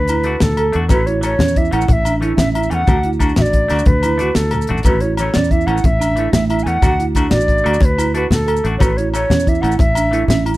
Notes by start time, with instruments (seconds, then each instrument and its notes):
Already playing: fingered electric bass D2, flute B4
0.08 marimba E4, closed hi-hat, low conga, low agogo, maracas
0.18 low conga
0.24 clean electric guitar A3 D4 F#4, marimba F#4, closed hi-hat
0.40 fingered electric bass D2, flute A4, snare, closed hi-hat, high conga, low conga, maracas
0.57 marimba A4, closed hi-hat, low agogo
0.66 low conga
0.72 fingered electric bass E2, clean electric guitar A3 D4 F#4, closed hi-hat
0.83 low conga
0.89 fingered electric bass A1, clean electric guitar E3 A3 C#4, marimba F#4, flute B4, kick, closed hi-hat, high conga, low conga, low agogo, maracas
1.06 marimba E4, flute C#5, closed hi-hat, maracas
1.21 clean electric guitar E3 A3 C#4, flute C#5, closed hi-hat, low agogo, maracas
1.39 fingered electric bass E2, marimba C#4, snare, closed hi-hat, high conga, low conga, maracas
1.48 maracas
1.56 marimba E4, flute E5, kick, closed hi-hat, maracas
1.65 maracas
1.71 fingered electric bass A1, clean electric guitar E3 A3 C#4, marimba E4, flute F#5, closed hi-hat, low agogo
1.81 maracas
1.88 fingered electric bass A1, flute F#5, kick, closed hi-hat, high conga, low conga, maracas
1.93 flute E5
2.05 marimba D4, closed hi-hat, low conga, low agogo, maracas
2.21 clean electric guitar E3 A3 C#4, marimba E4, closed hi-hat
2.37 fingered electric bass A1, marimba C#4, flute E5, snare, closed hi-hat, high conga, low conga, maracas
2.53 marimba E4, flute E5, closed hi-hat, low agogo
2.63 low conga, maracas
2.70 fingered electric bass E2, clean electric guitar E3 A3 C#4, flute G#5, closed hi-hat
2.74 flute F#5
2.80 low conga
2.87 fingered electric bass D2, clean electric guitar A3 D4, marimba F#4, muted clean electric guitar stroke, kick, closed hi-hat, high conga, low conga, low agogo, maracas
2.96 low conga
3.03 marimba E4, closed hi-hat, low conga
3.13 maracas
3.20 clean electric guitar A3 D4 F#4, marimba D4, kick, closed hi-hat, low agogo, maracas
3.29 maracas
3.36 fingered electric bass A1, marimba F#4, flute E5, snare, closed hi-hat, high conga, low conga
3.42 flute D5, maracas
3.53 kick, closed hi-hat, maracas
3.64 low conga
3.68 fingered electric bass D2, clean electric guitar A3 D4 F#4, marimba D4, snare, closed hi-hat, low agogo, maracas
3.79 low conga, maracas
3.86 fingered electric bass D2, flute B4, kick, closed hi-hat, high conga, low conga
4.03 marimba E4, closed hi-hat, high conga, low agogo, maracas
4.18 clean electric guitar A3 D4 F#4, marimba F#4, closed hi-hat, high conga, maracas
4.35 fingered electric bass D2, flute A4, snare, closed hi-hat, high conga, maracas
4.51 marimba A4, closed hi-hat, low conga, low agogo, maracas
4.62 maracas
4.67 fingered electric bass A1, clean electric guitar A3 D4 F#4, closed hi-hat, low conga
4.78 maracas
4.83 fingered electric bass A1, clean electric guitar E3 A3, marimba F#4, flute B4, kick, closed hi-hat, high conga, low conga, low agogo, maracas
4.88 clean electric guitar C#4
5.00 marimba E4, flute C#5, closed hi-hat, maracas
5.17 clean electric guitar E3 A3, flute C#5, closed hi-hat, low conga, low agogo, maracas
5.22 clean electric guitar C#4
5.34 fingered electric bass E2, marimba C#4, flute D5, snare, closed hi-hat, high conga, low conga, maracas
5.44 maracas
5.51 marimba E4, flute E5, kick, closed hi-hat, maracas
5.61 maracas
5.66 fingered electric bass A1, clean electric guitar E3 A3 C#4, marimba E4, flute F#5, closed hi-hat, low agogo
5.78 maracas
5.84 fingered electric bass A1, flute E5, kick, closed hi-hat, high conga, low conga, maracas
6.00 marimba D4, closed hi-hat, low conga, low agogo, maracas
6.09 low conga
6.16 clean electric guitar E3 A3 C#4, marimba E4, closed hi-hat
6.32 fingered electric bass A1, marimba A3, flute E5, snare, closed hi-hat, high conga, low conga, maracas
6.48 marimba E4, flute E5, closed hi-hat, low agogo
6.57 low conga, maracas
6.63 fingered electric bass E2, clean electric guitar E3 A3, flute G#5, closed hi-hat
6.68 clean electric guitar C#4, flute F#5
6.75 low conga
6.82 fingered electric bass D2, clean electric guitar A3 D4 F#4, marimba F#4, kick, closed hi-hat, high conga, low conga, low agogo, maracas
6.99 marimba E4, closed hi-hat, maracas
7.15 clean electric guitar A3 D4 F#4, marimba D4, kick, closed hi-hat, low agogo, maracas
7.30 fingered electric bass A1, marimba F#4, flute D5, snare, closed hi-hat, high conga, low conga, maracas
7.40 maracas
7.48 kick, closed hi-hat, maracas
7.58 maracas
7.64 fingered electric bass D2, clean electric guitar A3 D4 F#4, marimba F#4, closed hi-hat, low agogo
7.74 maracas
7.80 fingered electric bass D2, flute C#5, kick, closed hi-hat, high conga, low conga, maracas
7.85 flute B4
7.98 marimba E4, closed hi-hat, low conga, low agogo, maracas
8.07 low conga
8.14 clean electric guitar A3 D4 F#4, marimba F#4, flute B4, closed hi-hat
8.30 fingered electric bass D2, flute A4, snare, closed hi-hat, high conga, low conga, maracas
8.47 marimba A4, closed hi-hat, low agogo
8.55 low conga, maracas
8.64 fingered electric bass A1, clean electric guitar A3 D4 F#4, closed hi-hat
8.72 low conga
8.78 fingered electric bass A1, clean electric guitar E3 A3 C#4, marimba F#4, flute C#5, kick, closed hi-hat, high conga, low conga, low agogo
8.82 flute B4, maracas
8.97 marimba E4, flute C#5, closed hi-hat, maracas
9.13 clean electric guitar E3 A3 C#4, flute C#5, closed hi-hat, low conga, low agogo, maracas
9.30 fingered electric bass E2, marimba C#4, snare, closed hi-hat, high conga, low conga, maracas
9.40 maracas
9.47 marimba E4, flute E5, kick, closed hi-hat, maracas
9.55 maracas
9.61 fingered electric bass A1, clean electric guitar E3 A3 C#4, marimba E4, flute F#5, closed hi-hat, low agogo
9.72 maracas
9.79 fingered electric bass A1, flute E5, kick, closed hi-hat, high conga, low conga, maracas
9.95 marimba D4, closed hi-hat, low conga, low agogo, maracas
10.05 low conga
10.11 clean electric guitar E3 A3 C#4, marimba E4, closed hi-hat
10.28 fingered electric bass A1, marimba C#4, flute E5, snare, closed hi-hat, high conga, low conga, maracas
10.45 marimba E4, closed hi-hat, low agogo
10.54 maracas